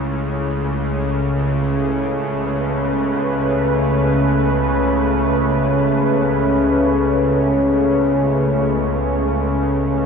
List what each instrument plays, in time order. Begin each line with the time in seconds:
Already playing: synth drone C#2 C#3, ambient pad C#3 A3 C#4 E4
1.15 ambient pad B4
9.88 ambient pad C#5